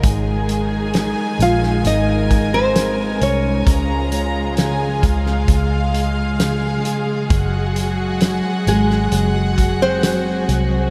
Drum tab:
HH |x-x-x-x-x-x-x-x-|x-x-x-x-x-x-x-x-|x-x-x-x-x-x-x-x-|
SD |----o--o----o---|----o--o----o---|----o--o----o---|
BD |o---------o-----|o-----o-o-------|o---------o-----|